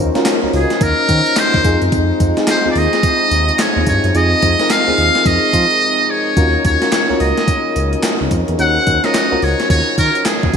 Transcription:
Already playing: C#3 F#3 A#3 C#4 D#4 F4 F#4 A#4 C5
0.00 D#2
0.15 C#4 F4 F#4 A#4, snare, closed hi-hat
0.25 snare, clap, closed hi-hat, tambourine
0.42 C#2 C#4 F4 F#4 A#4
0.53 C#2 G#4, open hi-hat
0.70 snare, closed hi-hat
0.81 D#2 A#4, kick, closed hi-hat, tambourine
1.09 D#3, kick, closed hi-hat, tambourine
1.26 closed hi-hat
1.36 C5, snare, clap, closed hi-hat, tambourine
1.54 D#2, kick
1.64 F2 C3 F3 G#3 C4 D#4 F4 G#4, kick, closed hi-hat, tambourine
1.82 F#2, closed hi-hat
1.92 F2, kick, closed hi-hat, tambourine
2.20 F2, kick, closed hi-hat, tambourine
2.37 C4 D#4 F4 G#4, snare, closed hi-hat
2.47 C5, snare, clap, closed hi-hat, tambourine
2.64 D#2 C4 D#4 F4 G#4
2.71 D5
2.75 D#2 D#5, open hi-hat
2.93 snare, closed hi-hat
3.03 kick, closed hi-hat, tambourine
3.31 D#2, closed hi-hat, tambourine
3.49 closed hi-hat
3.59 C#5, snare, clap, closed hi-hat, tambourine
3.76 D#2
3.86 G2 C#5, kick, closed hi-hat, tambourine
4.04 F#2, closed hi-hat
4.15 F2 C4 D#4 F4 G#4 D#5, closed hi-hat, tambourine
4.42 F2, kick, closed hi-hat, tambourine
4.59 C4 D#4 F4 A#4, snare, closed hi-hat
4.70 F5, snare, clap, closed hi-hat, tambourine
4.87 D#2 C4 D#4 F4 G#4
4.98 D#2, open hi-hat
5.15 snare, closed hi-hat
5.26 F2 D#5, kick, closed hi-hat, tambourine
5.53 F3, kick, closed hi-hat, tambourine
5.71 closed hi-hat
6.10 C#5
6.36 D#2 C#3 F#3 A#3 C#4 F4 F#4 A#4, kick, closed hi-hat, tambourine
6.65 D#2 C#5, kick, closed hi-hat, tambourine
6.81 C#4 F4 F#4 A#4, snare, closed hi-hat
6.92 snare, clap, closed hi-hat, tambourine
7.09 C#2 C#4 F4 F#4 A#4
7.20 C#2 D#5, open hi-hat
7.37 snare, closed hi-hat
7.48 kick, closed hi-hat, tambourine
7.76 C#2, closed hi-hat, tambourine
7.93 closed hi-hat
8.03 snare, clap, closed hi-hat, tambourine
8.21 C#2
8.31 F2, kick, closed hi-hat, tambourine
8.48 E2, closed hi-hat
8.58 D#2 C#4 D#4 F#4 A#4 C5 F#5, closed hi-hat, tambourine
8.87 D#2, kick, closed hi-hat, tambourine
9.04 C#4 F4 F#4 A#4 D#5, snare, closed hi-hat
9.14 snare, clap, closed hi-hat, tambourine
9.31 C#2 C#4 F4 F#4 A#4
9.42 C#2 C#5, open hi-hat
9.60 snare, closed hi-hat
9.70 D#2 C#5, kick, closed hi-hat, tambourine
9.98 D#3 A#4, kick, closed hi-hat, tambourine
10.15 closed hi-hat
10.25 G#4, snare, clap, closed hi-hat, tambourine
10.43 D#2, kick
10.53 G#1 C3 G#3 C4 D#4, kick, closed hi-hat, tambourine

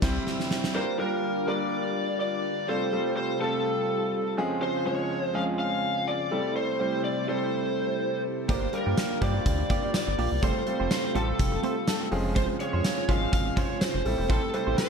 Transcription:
Already playing: C3 E3 G3 E4
0.02 C2 G3 C4 E4 C5 E5, kick, snare, crash
0.27 snare
0.40 snare
0.51 snare
0.64 snare
0.74 D3 G3 A#3 D4 F4 A#4 C5
0.99 G3 A#3 D4 F4 A#4
1.47 G3 A#3 D4 F4 A#4 D5
2.20 D5
2.68 C3 G3 A3 C4 F4 A4 C5
2.92 G3 A3 C4 F4 A4
3.17 C5
3.40 G3 A3 C4 F4 A4
4.37 F2 C#3 F3 G#3 C4 C#4 G#4
4.62 C5
4.86 F3 G#3 C#4 G#4 C#5
5.24 C5
5.34 F3 G#3 C4 C#4 G#4 F5
5.59 F5
6.08 D5
6.31 C3 G3 A3 C4 E4 A4
6.56 C5
6.79 G3 A3 C4 E4 C5
7.04 D5
7.27 G3 A3 C4 E4 A4 C5
8.49 G1 D3 G3 A#3 D4 F4 G4 A#4 C5 D5, kick, closed hi-hat
8.62 muted clean electric guitar stroke
8.72 G3 A#3 D4 F4 A#4, muted clean electric guitar stroke, closed hi-hat
8.86 G2 A#3 F4 G4 D5
8.97 muted clean electric guitar stroke, snare, closed hi-hat, tambourine
9.10 muted clean electric guitar stroke
9.21 G2 G3 A#3 D4 F4 G4 C5 D5, kick, closed hi-hat
9.34 A#3 F4 G4 D5
9.46 D2, muted clean electric guitar stroke, kick, closed hi-hat
9.59 muted clean electric guitar stroke
9.70 A#3 F4 G4 D5, kick, closed hi-hat
9.83 A#3 F4 G4 D5
9.94 D5, snare, closed hi-hat, tambourine
10.07 G1, muted clean electric guitar stroke
10.18 A#1 A#3 F4 G4 D5, open hi-hat
10.32 C2, muted clean electric guitar stroke
10.42 F1 C3 G3 A3 C4 F4 G4 A4 C5, kick, closed hi-hat
10.56 muted clean electric guitar stroke
10.66 G3 A3 C4 F4 A4, muted clean electric guitar stroke, closed hi-hat
10.80 F1 A3 C4 G4 C5
10.91 C5, muted clean electric guitar stroke, snare, closed hi-hat, tambourine
11.04 muted clean electric guitar stroke
11.15 A1 G3 A3 C4 F4 G4 A4 C5, closed hi-hat
11.28 A3 C4 G4 C5
11.39 F1, muted clean electric guitar stroke, kick, closed hi-hat
11.52 muted clean electric guitar stroke
11.63 A3 C4 G4 C5, closed hi-hat
11.76 muted clean electric guitar stroke
11.87 A5, muted clean electric guitar stroke, snare, closed hi-hat, tambourine
12.01 muted clean electric guitar stroke
12.11 F1 C#3 F3 G#3 C4 C#4 F4 G#4 F5, open hi-hat
12.25 muted clean electric guitar stroke
12.35 G#3 C#4 F4 C5, kick, closed hi-hat
12.49 muted clean electric guitar stroke
12.60 F3 G#3 C#4 G#4 C#5, muted clean electric guitar stroke, closed hi-hat
12.73 F2 G#3 C#4 F4 C5
12.84 muted clean electric guitar stroke, snare, closed hi-hat, tambourine
12.97 muted clean electric guitar stroke
13.08 G#1 F3 G#3 C4 C#4 F4 G#4 C5 F5, kick, closed hi-hat
13.21 G#3 C#4 F4 C5
13.33 G#1 F5, kick, closed hi-hat
13.46 muted clean electric guitar stroke
13.56 G#3 C#4 F4 C5 C#5, kick, closed hi-hat
13.70 G#3 C#4 F4 C5
13.81 C5, muted clean electric guitar stroke, snare, closed hi-hat, tambourine
13.94 F1, muted clean electric guitar stroke
14.05 A1 C3 G3 A3 C4 E4 A4, open hi-hat
14.18 E1, muted clean electric guitar stroke
14.29 A1 C4 E4 G4 A4 C5, kick, closed hi-hat
14.42 muted clean electric guitar stroke
14.53 G3 A3 C4 E4 A4 C5, muted clean electric guitar stroke, closed hi-hat
14.67 A1 C4 E4 G4 C5
14.78 C5, muted clean electric guitar stroke, snare, closed hi-hat, tambourine

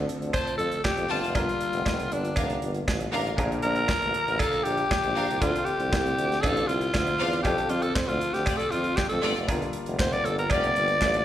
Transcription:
Already playing: D3 F3 A3 C4 D4 F4 A4
0.09 closed hi-hat
0.21 D2, closed hi-hat
0.33 F4 C5 D5 A5, kick, closed hi-hat, cowbell
0.47 closed hi-hat
0.58 F2 A4, closed hi-hat
0.72 closed hi-hat
0.84 G4, kick, snare, clap, cowbell
0.97 F2, closed hi-hat
1.09 G1 F4 D5 A5, open hi-hat
1.23 F1, closed hi-hat
1.33 G1 D3 G3 A#3 D4 F4 A#4, kick, closed hi-hat, cowbell
1.49 closed hi-hat
1.61 closed hi-hat
1.73 F1, closed hi-hat
1.86 F1, kick, snare, clap, cowbell
1.99 closed hi-hat
2.12 G1 D4, closed hi-hat
2.25 closed hi-hat
2.36 F1 D4 A#4 F5, kick, closed hi-hat, cowbell
2.50 closed hi-hat
2.62 G1, closed hi-hat
2.74 closed hi-hat
2.88 A1, kick, snare, clap, cowbell
3.00 closed hi-hat
3.12 A1 D4 A#4 F5, open hi-hat
3.27 closed hi-hat
3.37 A#1 A#2 F3 A#3 D4 A#4, kick, closed hi-hat, cowbell
3.52 closed hi-hat
3.62 A#1 A#4, closed hi-hat
3.75 closed hi-hat
3.88 kick, snare, clap, cowbell
4.02 A1, closed hi-hat
4.14 closed hi-hat
4.28 A1, closed hi-hat
4.39 D4 A4 A#4 F5, kick, closed hi-hat, cowbell
4.53 closed hi-hat
4.64 A#1 G4, closed hi-hat
4.77 closed hi-hat
4.91 kick, snare, clap, cowbell
5.04 A#1, closed hi-hat
5.16 A#1 D4 A#4 F5, open hi-hat
5.30 C2, closed hi-hat
5.40 D2 D3 A3 C4 E4 F4, kick, closed hi-hat, cowbell
5.50 F4
5.56 closed hi-hat
5.65 G4, closed hi-hat
5.80 C2, closed hi-hat
5.92 C2, kick, snare, clap, cowbell
6.06 closed hi-hat
6.18 D2, closed hi-hat
6.32 snare, closed hi-hat
6.42 A1 D4 A4 C5 F5, kick, closed hi-hat, cowbell
6.57 closed hi-hat
6.68 C2 F4, closed hi-hat
6.81 closed hi-hat
6.94 D2, kick, snare, clap, cowbell
7.07 closed hi-hat
7.19 E2 D4 C5 F5, open hi-hat
7.33 closed hi-hat
7.43 F2 F3 C4 D4 G4, kick, closed hi-hat, cowbell
7.47 A4
7.58 closed hi-hat
7.69 F2 F4, closed hi-hat
7.82 A4, closed hi-hat
7.95 C5, kick, snare, clap, cowbell
8.08 D2 F4, closed hi-hat
8.21 closed hi-hat
8.33 D2 G4, snare, closed hi-hat
8.46 A3 F4 D5, kick, closed hi-hat, cowbell
8.58 A4, closed hi-hat
8.71 F2 F4, closed hi-hat
8.84 closed hi-hat
8.96 G4, kick, snare, clap, cowbell
9.09 F2 A4, closed hi-hat
9.23 G1 A3 F4 D5, open hi-hat
9.36 F1, closed hi-hat
9.47 G1 G3 A#3 D4 F4 A#4, kick, closed hi-hat, cowbell
9.62 closed hi-hat
9.73 closed hi-hat
9.86 F1, closed hi-hat
9.99 F1 C5, kick, snare, clap, cowbell
10.13 D5, closed hi-hat
10.25 G1 A4, closed hi-hat
10.38 A#4, closed hi-hat
10.50 F1 A#3 G4 D5, kick, closed hi-hat, cowbell
10.64 closed hi-hat
10.76 G1, closed hi-hat
10.88 closed hi-hat
11.02 A1, kick, snare, clap, cowbell
11.14 closed hi-hat

